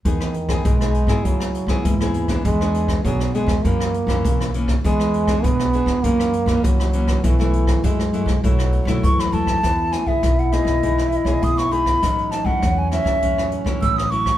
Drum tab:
HH |x-xxxxx-x-x-xxxx|x-xxxxxxx-x-x-x-|x-xxxxx-x-x-xxxx|x-xxxxxxx-x-x-x-|
SD |-r-r-r-r-r-r-r-r|-r-r-r-r-r-r-r-r|-r-r-r-r-r-r-r-r|-r-r-r-r-r-r-r-r|
BD |o--oo--oo--oo--o|o--oo--oo--oo--o|o--oo--oo--oo--o|o--oo--oo--oo--o|

HH |x-x-xxxxx-xxxxxx|xxx-x-xxxxx-x-xx|
SD |r-r-r-rr-r-r-r-r|r-r-r-rr-r-r-r-r|
BD |o--oo--oo--oo--o|o--oo--oo--oo--o|